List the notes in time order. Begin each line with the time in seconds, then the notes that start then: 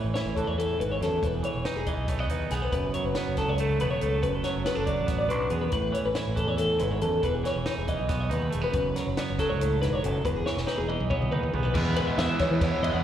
Already playing: A2 E3
0.04 A1 B4
0.14 E4 C#5, snare, closed hi-hat
0.26 A1
0.37 E3 A4, kick, closed hi-hat
0.47 E2 C#5
0.58 A2 A4, closed hi-hat
0.78 G#1 G#2 B4, closed hi-hat
0.91 C#5
1.00 E2 F#2 A4, snare, closed hi-hat
1.22 E1 E2 B4, kick, closed hi-hat
1.35 G#4
1.43 E3 C#5, closed hi-hat
1.55 E1
1.65 D#4 B4, snare, closed hi-hat
1.76 E1 G#4
1.86 E3 D#5, kick, closed hi-hat
1.97 B1
2.08 A3 C#5, kick, closed hi-hat
2.19 B3 D#5
2.29 D#2 D#4 B4, closed hi-hat
2.50 B1 B3 G#4, snare, closed hi-hat
2.62 B4
2.72 F#1 F#2 B4, kick, closed hi-hat
2.94 F#3 C#5, closed hi-hat
3.04 F#1 B4
3.15 B3 C#5, snare, closed hi-hat
3.27 F#1
3.37 F#3 A4, kick, snare, closed hi-hat
3.48 C#2 C#5
3.58 A3 A4, closed hi-hat
3.80 E1 B3 B4, closed hi-hat
3.91 C#5
4.01 C#2 A3 A4, closed hi-hat
4.23 F#1 F#2 B4, kick, closed hi-hat
4.34 A4
4.44 F#3 C#5, snare, closed hi-hat
4.56 F#1
4.66 B3 B4, snare, closed hi-hat
4.75 F#1 D4 A4
4.86 F#3 D5, kick, closed hi-hat
4.99 A1
5.07 B3 C#5, kick, snare, closed hi-hat
5.19 D5
5.29 B1 D4 B4, closed hi-hat
5.50 E2 B3 G#4, closed hi-hat
5.61 B4
5.72 A1 A2 B4, kick, closed hi-hat
5.92 E3 C#5, closed hi-hat
6.05 A1 B4
6.15 E4 C#5, snare, closed hi-hat
6.28 A1
6.36 E3 A4, kick, closed hi-hat
6.47 E2 C#5
6.58 A2 A4, closed hi-hat
6.79 G#1 G#2 B4, closed hi-hat
6.91 C#5
7.01 E2 F#2 A4, closed hi-hat
7.22 E1 E2 B4, kick, closed hi-hat
7.35 G#4
7.44 E3 C#5, snare, closed hi-hat
7.56 E1
7.66 D#4 B4, snare, closed hi-hat
7.78 E1 G#4
7.88 E3 D#5, kick, closed hi-hat
8.00 B1
8.09 B3 C#5, kick, snare, closed hi-hat
8.20 D#5
8.29 D#2 D#4 B4, closed hi-hat
8.50 A3 G#4, closed hi-hat
8.55 E1
8.61 B3 B4
8.71 F#1 F#2 B4, kick, closed hi-hat
8.96 F#3 C#5, snare, closed hi-hat
9.06 F#1 B4
9.17 B3 C#5, snare, closed hi-hat
9.30 F#1
9.39 F#3 A4, kick, snare, closed hi-hat
9.49 C#2 C#5
9.60 A2 A4, closed hi-hat
9.82 E1 G#2 B4, snare, closed hi-hat
9.93 C#5
10.03 F#1 F#2 A4, closed hi-hat
10.25 E1 E2 B4, kick, closed hi-hat
10.36 G#4
10.46 E3 C#5, snare
10.57 E1, snare
10.67 D#4 B4, snare
10.78 E1 G#4, high tom
10.88 E3 D#5, high tom
11.00 B1, mid tom
11.10 B3 C#5, kick, mid tom
11.21 D#5, mid tom
11.31 D#2 D#4 B4, mid tom
11.43 floor tom
11.52 B1 B3 G#4, floor tom
11.63 B4, floor tom
11.74 E2 E3 G#3 B3 E4 G#4, kick, crash
11.96 G#3 B3 E4 B4, ride
12.07 D#5
12.18 E2 E3 G#3 B3 E4 E5, snare, ride
12.39 E3 G#3 B3 E4 C#5, kick, snare, ride
12.51 E3 B4
12.61 E2 E3 G#3 B3 E4 C#5, kick, snare, ride
12.82 E2 G#3 B3 E4 D#5, ride
12.94 E2 F#5